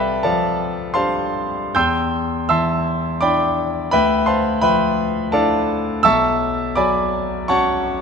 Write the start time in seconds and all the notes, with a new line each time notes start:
Already playing: C2 A4 B4 D5 E5 F5 G5 A5 B5
0.23 F3 A4 D5 F5 A5
0.94 D4 G4 C5 F5 A5 C6
1.75 E2 G5 C6 E6 G6
2.49 E3 E5 A5 C6 E6
3.21 D4 E4 D5 G5 B5 D6
3.91 D2 B4 E5 G5 B5
4.26 C5 F5 A5 C6
4.61 F3 B4 E5 G5 B5
5.32 D4 E4 A4 D5 F5 A5
6.03 B1 E5 A5 C#6 E6
6.75 F#3 D5 G#5 B5 D6
7.48 C#4 F#4 C#5 F#5 A5 C#6